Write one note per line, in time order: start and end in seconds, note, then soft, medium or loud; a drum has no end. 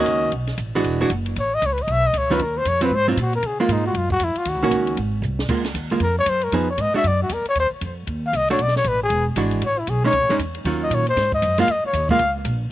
0.00 0.31 D#3 medium
0.00 0.31 A#3 medium
0.00 0.31 C#4 medium
0.00 0.31 F#4 medium
0.00 0.34 D#5 medium
0.06 0.31 C#2 medium
0.06 kick soft
0.06 hi-hat pedal soft
0.06 ride medium
0.32 0.57 B1 medium
0.32 kick soft
0.32 ride medium
0.47 snare soft
0.47 ride soft
0.57 0.83 A1 medium
0.57 kick soft
0.57 hi-hat pedal medium
0.57 ride medium
0.75 0.99 E3 medium
0.75 0.99 G#3 medium
0.75 1.00 D4 medium
0.75 1.00 F#4 medium
0.84 1.09 E1 medium
0.84 kick soft
0.84 ride medium
1.01 1.10 E3 medium
1.01 1.10 G#3 medium
1.01 1.10 D4 medium
1.01 1.10 F#4 medium
1.10 1.35 F#1 medium
1.10 kick soft
1.10 hi-hat pedal soft
1.10 ride medium
1.26 ride soft
1.36 1.61 A1 medium
1.36 1.56 C#5 medium
1.36 kick soft
1.36 ride medium
1.55 1.67 D#5 loud
1.62 1.87 C#2 medium
1.62 kick soft
1.62 hi-hat pedal medium
1.62 ride medium
1.66 1.75 C#5 medium
1.73 1.84 B4 medium
1.78 ride soft
1.82 1.93 D#5 medium
1.87 2.12 B1 medium
1.87 kick soft
1.87 ride medium
1.92 2.08 E5 loud
2.07 2.19 D#5 medium
2.13 2.39 C#2 medium
2.13 kick soft
2.13 hi-hat pedal medium
2.13 ride medium
2.18 2.34 C#5 medium
2.30 2.39 D#3 medium
2.30 2.39 F#3 medium
2.30 2.40 C#4 medium
2.30 2.40 F4 medium
2.30 2.44 B4 medium
2.39 2.65 D#2 medium
2.39 2.59 A#4 medium
2.39 kick soft
2.39 ride medium
2.58 2.70 C5 medium
2.65 2.90 F2 medium
2.65 2.83 C#5 loud
2.65 kick soft
2.65 hi-hat pedal medium
2.65 ride medium
2.81 2.90 F#3 medium
2.81 2.91 C4 medium
2.81 2.91 F4 medium
2.81 2.96 B4 medium
2.81 ride medium
2.91 3.16 G#2 medium
2.91 kick soft
2.95 3.09 C5 loud
3.08 3.17 F#3 medium
3.08 3.17 C4 medium
3.08 3.23 D#4 medium
3.08 3.17 F4 medium
3.17 3.42 A#2 medium
3.17 kick soft
3.17 hi-hat pedal medium
3.17 ride medium
3.21 3.35 F#4 medium
3.33 3.48 A#4 medium
3.33 ride soft
3.43 3.68 C#3 medium
3.43 3.61 G#4 medium
3.43 kick soft
3.43 ride medium
3.60 3.93 G#3 medium
3.60 3.93 A#3 medium
3.60 3.94 F4 medium
3.60 3.74 F4 medium
3.68 3.94 G#2 medium
3.68 3.86 D#4 medium
3.68 kick soft
3.68 hi-hat pedal medium
3.68 ride medium
3.87 3.99 F#4 medium
3.95 4.19 F#2 medium
3.95 4.12 F4 medium
3.95 kick soft
3.95 ride medium
4.10 4.25 F#4 loud
4.10 kick medium
4.20 4.35 F2 medium
4.20 kick soft
4.20 hi-hat pedal medium
4.20 ride medium
4.24 4.39 E4 medium
4.36 4.50 F4 medium
4.36 muted upright bass stroke soft
4.36 ride soft
4.45 4.55 D#2 medium
4.45 4.99 F#4 medium
4.45 kick soft
4.45 ride medium
4.55 4.62 C#2 medium
4.63 4.70 A#1 medium
4.63 4.96 D#3 medium
4.63 4.96 A#3 medium
4.63 4.97 C#4 medium
4.63 4.97 F#4 medium
4.71 4.96 C#2 medium
4.71 kick soft
4.71 hi-hat pedal medium
4.71 ride medium
4.87 ride soft
4.97 5.21 G#1 medium
4.97 kick soft
4.97 ride medium
5.22 5.48 C2 loud
5.22 hi-hat pedal medium
5.39 snare medium
5.48 5.74 C#2 medium
5.48 5.64 G#3 soft
5.48 5.64 A#3 soft
5.48 5.64 F4 soft
5.48 kick medium
5.48 crash medium
5.65 snare soft
5.65 ride soft
5.74 5.99 D#2 medium
5.74 kick soft
5.74 hi-hat pedal medium
5.74 ride medium
5.90 6.00 G#3 soft
5.90 6.01 A#3 medium
5.90 6.01 F4 medium
5.90 ride soft
6.00 6.25 F2 medium
6.00 6.17 A#4 medium
6.00 kick soft
6.00 ride medium
6.19 6.31 C#5 loud
6.26 6.51 F#2 medium
6.26 6.46 C5 medium
6.26 kick soft
6.26 hi-hat pedal medium
6.26 ride medium
6.41 6.57 A#4 medium
6.41 ride soft
6.52 6.77 F2 medium
6.52 6.67 F3 medium
6.52 6.67 B3 soft
6.52 6.67 D#4 medium
6.52 6.67 G#4 medium
6.52 6.70 B4 medium
6.52 kick soft
6.52 ride medium
6.70 6.83 C#5 medium
6.78 6.93 G#2 medium
6.78 6.95 D#5 medium
6.78 kick soft
6.78 hi-hat pedal medium
6.78 ride medium
6.94 7.03 G#3 medium
6.94 7.04 D4 medium
6.94 7.04 F#4 medium
6.94 7.09 E5 medium
6.94 muted upright bass stroke soft
7.04 7.29 F#2 medium
7.04 7.21 D5 medium
7.04 kick soft
7.04 ride medium
7.23 7.35 F#4 medium
7.29 7.44 E2 medium
7.29 7.47 A#4 medium
7.29 kick soft
7.29 hi-hat pedal medium
7.29 ride medium
7.45 7.57 C#5 loud
7.45 muted upright bass stroke soft
7.45 ride soft
7.55 7.70 D#2 medium
7.55 kick soft
7.55 ride medium
7.60 7.68 C5 medium
7.81 8.06 F2 medium
7.81 kick soft
7.81 hi-hat pedal medium
7.81 ride medium
8.07 8.32 D#2 medium
8.07 kick soft
8.07 ride medium
8.26 8.38 F5 medium
8.33 8.58 C2 medium
8.33 8.50 D#5 medium
8.33 kick soft
8.33 hi-hat pedal medium
8.33 ride medium
8.48 8.59 A3 medium
8.48 8.59 D4 medium
8.48 8.59 F#4 medium
8.48 8.64 C#5 medium
8.48 ride soft
8.58 8.84 B1 medium
8.58 8.76 D5 medium
8.58 kick soft
8.58 ride medium
8.68 snare soft
8.76 8.90 C#5 medium
8.76 snare soft
8.84 9.09 A1 medium
8.84 9.02 B4 medium
8.84 kick soft
8.84 hi-hat pedal medium
8.84 ride medium
9.03 9.26 G#4 medium
9.10 9.35 E1 medium
9.10 kick soft
9.10 ride medium
9.36 9.61 G#1 medium
9.36 9.62 E3 medium
9.36 9.62 G#3 medium
9.36 9.63 D4 medium
9.36 9.63 F#4 medium
9.36 kick soft
9.36 hi-hat pedal medium
9.36 ride medium
9.51 ride soft
9.61 9.87 A1 medium
9.61 kick soft
9.61 ride medium
9.65 9.80 C#5 medium
9.79 9.91 E4 medium
9.87 10.12 B1 medium
9.87 10.04 G#4 medium
9.87 kick soft
9.87 hi-hat pedal medium
9.87 ride medium
10.04 10.13 G#3 medium
10.04 10.13 C#4 medium
10.04 10.14 D#4 medium
10.04 10.38 C#5 loud
10.13 10.21 C#2 medium
10.13 kick soft
10.13 ride medium
10.21 10.29 A1 medium
10.29 10.38 G#1 medium
10.29 10.39 G#3 medium
10.29 10.39 C#4 medium
10.29 10.39 D#4 medium
10.29 snare soft
10.39 10.64 E2 medium
10.39 kick soft
10.39 hi-hat pedal medium
10.39 ride medium
10.55 ride soft
10.64 10.90 D#2 medium
10.64 11.04 D#3 soft
10.64 11.04 F#3 medium
10.64 11.04 C#4 medium
10.64 11.04 F4 medium
10.64 kick soft
10.64 ride medium
10.83 10.96 D#5 medium
10.90 11.15 A#2 medium
10.90 kick soft
10.90 hi-hat pedal medium
10.90 ride medium
10.94 11.08 C#5 medium
11.07 11.32 C5 medium
11.07 ride soft
11.17 11.41 G#2 medium
11.17 kick soft
11.17 snare soft
11.17 ride medium
11.32 11.57 D#5 medium
11.32 kick medium
11.42 11.67 F#2 loud
11.42 kick soft
11.42 hi-hat pedal medium
11.42 ride medium
11.58 11.67 G#3 medium
11.58 11.68 A#3 medium
11.58 11.68 F4 medium
11.58 11.73 F5 loud
11.58 snare soft
11.58 ride soft
11.67 11.82 F2 medium
11.67 kick soft
11.67 ride medium
11.71 11.85 D#5 medium
11.84 12.09 C#5 medium
11.84 muted upright bass stroke soft
11.93 12.18 D#2 loud
11.93 kick soft
11.93 hi-hat pedal medium
11.93 ride medium
12.09 12.19 G#3 medium
12.09 12.19 A#3 medium
12.09 12.20 F4 medium
12.09 12.34 F5 loud
12.09 kick medium
12.19 12.44 C#2 medium
12.19 kick soft
12.19 ride medium
12.45 12.69 A#1 medium
12.45 kick soft
12.45 hi-hat pedal medium
12.45 ride medium